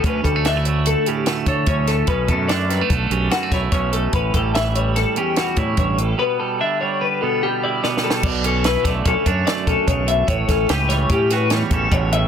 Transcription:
<<
  \new Staff \with { instrumentName = "Clean electric guitar" } { \time 5/4 \key b \minor \tempo 4 = 146 b'8 a'8 e''8 cis''8 a'8 g'8 fis'8 cis''8 cis''8 a'8 | b'8 a'8 d''8 b'8 a'8 g'8 fis'8 cis''8 cis''8 a'8 | b'8 a'8 e''8 cis''8 a'8 g'8 fis'8 cis''8 cis''8 a'8 | b'8 a'8 e''8 cis''8 b'8 a'8 g'8 d''8 d''8 a'8 |
d''8 a'8 b'8 d''8 a'8 cis''8 d''8 a'8 cis''8 e''8 | cis''8 a'8 b'8 cis''8 g'8 b'8 cis''8 a'8 cis''8 e''8 | }
  \new Staff \with { instrumentName = "Clean electric guitar" } { \clef bass \time 5/4 \key b \minor << { cis'8 g16 a16 d'16 e'16 a4 cis'8 a8 a'8 cis'8 a8 | cis'8 a8 d'8 g16 a8. cis'8 g16 a16 e'8 cis'8 a8 | cis'8 g8 e'8 g4 cis'8 g8 e'4. | b8 g8 d'8 g4 b8 g8 e'8 b8 g8 |
r8 cis'8 e'8 a8 cis'8 d'8 a8 cis'4. | r8 cis'8 g'8 g8 cis'8 fis'8 g8 cis'4. | } \\ { <d, d>4 d4. a,4. d,4 | b,4 d4. fis,4. b,4 | a,4 e4. e,4. g,8 a,8 | b,4 d4. b,4. b,4 |
b,4. d4. fis,4 cis8 b,8 | a,4. e4. e,4 b,8 a,8 | } >> }
  \new Staff \with { instrumentName = "Fingered electric bass" } { \clef bass \time 5/4 \key b \minor d,8 d,2 r4 d8 d,4 | b,,8 fis,4. b,,8 b,,8 r8 b,,8 b,,4 | a,,8 a,,2 r4 a,8 a,,4 | r1 r4 |
b,,4. b,,8 b,,16 r16 fis,8 r8 b,,16 r16 b,,4 | a,,8 a,,8 cis,4 a,4. a,,8 a,,4 | }
  \new DrumStaff \with { instrumentName = "Drums" } \drummode { \time 5/4 <hh bd>8 <hh bd>8 <hh sn>8 hh8 hh8 hh8 <hh sn>8 <hh bd>8 <hh bd>8 <hh sn>8 | <hh bd>8 <hh bd>8 <hh sn>8 <hh sn>8 <hh bd>8 hh8 <hh sn>8 <hh bd sn>8 <hh bd>8 hh8 | <hh bd>8 <hh bd>8 <hh sn>8 hh8 <hh sn>8 hh8 <hh sn>8 <hh bd>8 <hh bd>8 hh8 | r4 r4 r4 r4 \tuplet 3/2 { sn8 sn8 sn8 } |
<cymc bd>8 hh8 <hh sn>8 <hh bd sn>8 <hh bd>8 <hh bd>8 <hh sn>8 <hh bd>8 <hh bd>8 hh8 | <hh bd>8 <hh bd sn>8 <hh sn>8 <hh sn>8 <hh bd>8 <hh sn>8 <hh sn>8 <hh bd>8 <hh bd>8 hh8 | }
>>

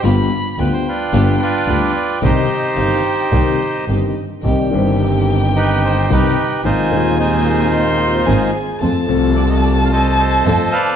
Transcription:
<<
  \new Staff \with { instrumentName = "Violin" } { \time 4/4 \key c \minor \tempo 4 = 110 b''4 g''2. | ees''4 f''8 g''8 ees''4. r8 | g''1 | aes''2 c'''4 aes''4 |
a''1 | }
  \new Staff \with { instrumentName = "Vibraphone" } { \time 4/4 \key c \minor r1 | r1 | ees''16 d''16 c''8 g'8. r2 r16 | r2 ees''8. c''8. aes'8 |
a'8. r2. r16 | }
  \new Staff \with { instrumentName = "Bandoneon" } { \time 4/4 \key c \minor << { r4 b'16 c''16 b'4 d''4 d''8 | c''2. r4 | r2 b'8 c''8 b'4 | c''4 c''2~ c''8 r8 |
r4 d''16 ees''16 d''16. f''32 ees''8 ees''4 f''8 | } \\ { r4. <d' f'>4 <f' b'>4. | <ees' g'>2. r4 | r2 <ees' g'>4 <ees' g'>4 | <ees' f'>4 <ees' f'>2~ <ees' f'>8 r8 |
r2 <a' c''>8 <a' c''>4 <b' d''>8 | } >> }
  \new Staff \with { instrumentName = "String section" } { \time 4/4 \key c \minor <b f' g'>8 r8 <b f' g'>8 r8 <b f' g'>8 r8 <b f' g'>8 r8 | <c' ees' g'>8 r8 <c' ees' g'>8 r8 <c' ees' g'>8 r8 <c' ees' g'>8 r8 | <c' ees' g'>8 <c' ees' g'>2~ <c' ees' g'>8 <c' ees' g'>8 r8 | <c' f' aes'>8 <c' f' aes'>2~ <c' f' aes'>8 <c' f' aes'>8 r8 |
<c' f' a'>8 <c' f' a'>2~ <c' f' a'>8 <c' f' a'>8 r8 | }
  \new Staff \with { instrumentName = "Grand piano" } { \clef bass \time 4/4 \key c \minor <g,, g, d g b f'>8 r8 <d, d g b f'>8 r8 <g,, g, d g b f'>8 r8 <d, d g b f'>8 r8 | <c, c ees g c' g'>8 r8 <g,, g, ees g c' g'>8 r8 <c, c ees g c' g'>8 r8 <g,, g, ees g c' g'>8 r8 | <c, c ees g c' g'>8 <g,, g, ees g c' g'>2~ <g,, g, ees g c' g'>8 <c, c ees g c' g'>8 r8 | <aes,, aes, ees aes c' f'>8 <ees,, ees, ees aes c' f'>2~ <ees,, ees, ees aes c' f'>8 <aes,, aes, ees aes c' f'>8 r8 |
<f, f a c' a'>8 <c, c f a c' a'>2~ <c, c f a c' a'>8 <f, f a c' a'>8 r8 | }
  \new Staff \with { instrumentName = "Double bass" } { \clef bass \time 4/4 \key c \minor g,,8 r8 d,8 r8 g,,8 r8 d,8 r8 | c,8 r8 g,,8 r8 c,8 r8 g,,8 r8 | c,8 g,,2~ g,,8 c,8 r8 | aes,,8 ees,2~ ees,8 aes,,8 r8 |
f,8 c,2~ c,8 f,8 r8 | }
>>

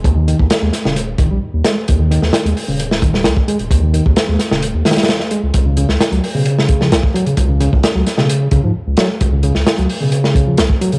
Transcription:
<<
  \new Staff \with { instrumentName = "Reed electric piano" } { \clef bass \time 4/4 \key des \lydian \tempo 4 = 131 r16 ees16 ees16 r8 aes16 r16 des16 r8 ees16 g16 r8 aes16 r16 | r16 ees16 ees16 r8 aes16 r16 des16 r8 ees16 g16 r8 aes16 r16 | r16 ees16 ees16 r8 aes16 r16 des16 r8 ees16 g16 r8 aes16 r16 | r16 des16 des16 r8 ges16 r16 ces16 r8 des16 f16 r8 ges16 r16 |
r16 des16 des16 r8 ges16 r16 ces16 r8 des16 f16 r8 ges16 r16 | r16 des16 des16 r8 ges16 r16 ces16 r8 des16 f16 r8 ges16 r16 | }
  \new Staff \with { instrumentName = "Sub bass" } { \clef bass \time 4/4 \key des \lydian ees,8. ees,16 r16 ees,16 r16 ees,,8. ees,,16 bes,,16 r16 ees,16 r8 | ees,8. ees,16 r16 ees,16 r16 ees,,4~ ees,,16 des,16 r8 ees,,16 | ees,8. ees,16 r16 ees,16 r16 ees,,8 ees,16 r4 r16 des,16 | des,8. des,16 r16 des,16 r16 des4~ des16 ces,16 r8 des16 |
des,8. des,16 r16 des,16 r16 des8. des16 aes,16 r16 des,16 r8 | des,8. des,16 r16 des,16 r16 des4~ des16 ces,16 r8 des16 | }
  \new DrumStaff \with { instrumentName = "Drums" } \drummode { \time 4/4 <hh bd>8 hh16 bd16 <hh sn>8 <hh sn>16 sn16 hh8 <hh bd>8 r8 <hh sn>8 | <hh bd>8 hh16 sn16 <hh sn>16 hh16 hho8 hh16 sn16 <hh bd>16 sn16 <hh sn>16 bd16 hh16 hh16 | <hh bd>8 hh16 bd16 <hh sn>8 <hh sn>16 sn16 hh8 <hh sn>32 <hh sn>32 <hh sn>32 <hh sn>32 <hh sn>16 sn16 hh8 | <hh bd>8 hh16 sn16 <hh sn>16 hh16 hho8 hh16 sn16 <hh bd>16 sn16 <hh sn>16 bd16 hh16 hh16 |
<hh bd>8 hh16 bd16 <hh sn>8 <hh sn>16 sn16 hh8 <hh bd>8 r8 <hh sn>8 | <hh bd>8 hh16 sn16 <hh sn>16 hh16 hho8 hh16 sn16 <hh bd>8 <hh sn>16 bd16 hh16 hh16 | }
>>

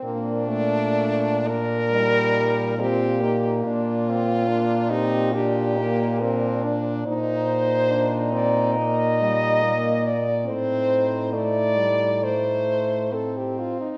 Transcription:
<<
  \new Staff \with { instrumentName = "French horn" } { \time 4/4 \key bes \major \tempo 4 = 69 d'4. bes'4. g'4 | f'4. ees'8 g'4 bes'8. r16 | c''4. d''8 ees''4. d''8 | c''4 d''4 c''4 a'16 g'16 f'16 ees'16 | }
  \new Staff \with { instrumentName = "French horn" } { \time 4/4 \key bes \major c'8 r8 d'4 ees'4 f'8 ees'8 | d'8 c'8 d'8 g'8 f'8 ees'8 d'4 | ees'1 | ees'2.~ ees'8 r8 | }
  \new Staff \with { instrumentName = "French horn" } { \time 4/4 \key bes \major bes8 a4 r8 g4 c'8 bes8~ | bes4 bes8 c'8 d'8 bes8 c'8 d'8 | ees'4 d'8 c'8 bes8 g8 bes8 r8 | c'4 a8 g8 a4 c'4 | }
  \new Staff \with { instrumentName = "French horn" } { \clef bass \time 4/4 \key bes \major bes,1 | bes,1 | bes,1 | a,2.~ a,8 r8 | }
>>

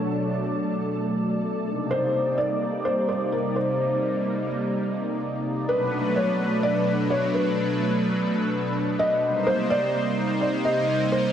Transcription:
<<
  \new Staff \with { instrumentName = "Felt piano" } { \time 4/4 \key b \phrygian \tempo 4 = 127 r1 | c''4 d''4 c''8 c''8 bes'8 c''8~ | c''4. r2 r8 | b'4 cis''4 d''4 cis''8 b'8~ |
b'8 r2 r8 dis''4 | c''8 d''4. d''8 ees''4 c''8 | }
  \new Staff \with { instrumentName = "Synth texture" } { \time 4/4 \key b \phrygian a'1~ | a'1~ | a'2. r4 | r1 |
r1 | r1 | }
  \new Staff \with { instrumentName = "Analog synth pad" } { \time 4/4 \key b \phrygian << { d''1~ | d''1~ | d''1 | b'1~ |
b'2.~ b'8 c''8~ | c''1 | } \\ { <b, fis a d'>2.~ <b, fis a d'>8 <c g bes ees'>8~ | <c g bes ees'>1~ | <c g bes ees'>1 | <b, fis a d'>1~ |
<b, fis a d'>2.~ <b, fis a d'>8 <c g bes ees'>8~ | <c g bes ees'>1 | } >> }
>>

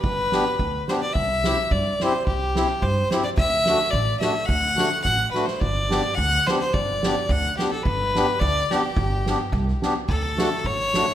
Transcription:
<<
  \new Staff \with { instrumentName = "Fiddle" } { \time 2/4 \key g \major \tempo 4 = 108 b'4. c''16 d''16 | e''4 d''8 c''8 | g'4 c''8 c''16 d''16 | e''4 d''8 e''8 |
fis''4 fis''8 b'16 c''16 | d''4 fis''8 c''16 c''16 | d''4 fis''8 g'16 a'16 | b'4 d''8 g'8~ |
g'4. r8 | \key d \major a'4 cis''4 | }
  \new Staff \with { instrumentName = "Accordion" } { \time 2/4 \key g \major r8 <b d' g'>8 r8 <b d' g'>8 | r8 <c' e' g'>8 r8 <c' e' g'>8 | r8 <c' e' g'>8 r8 <c' e' g'>8 | r8 <a d' fis'>8 r8 <a d' fis'>8 |
r8 <a d' fis'>8 r8 <a d' fis'>8 | r8 <b d' g'>8 r8 <b d' g'>8 | r8 <b d' g'>8 r8 <b d' g'>8 | r8 <b d' g'>8 r8 <b d' g'>8 |
r8 <b d' g'>8 r8 <b d' g'>8 | \key d \major r8 <a d' fis'>8 r8 <a d' fis'>8 | }
  \new Staff \with { instrumentName = "Upright bass" } { \clef bass \time 2/4 \key g \major g,,4 d,8 r8 | c,4 g,8 r8 | c,4 g,8 r8 | d,4 a,,8 r8 |
d,4 a,,8 r8 | g,,4 d,8 r8 | g,,4 d,8 r8 | g,,4 d,8 r8 |
g,,4 c,8 r8 | \key d \major d,4 gis,,4 | }
  \new DrumStaff \with { instrumentName = "Drums" } \drummode { \time 2/4 bd8 sn8 bd8 sn8 | bd8 sn8 bd8 sn8 | bd8 sn8 bd8 sn8 | bd8 sn8 bd8 sn8 |
bd8 sn8 <bd sn>8 sn16 sn16 | bd8 sn8 bd8 sn8 | bd8 sn8 bd8 sn8 | bd8 sn8 bd8 sn8 |
bd8 sn8 <bd sn>16 sn16 sn8 | bd8 <hhp sn>8 bd8 <hhp sn>8 | }
>>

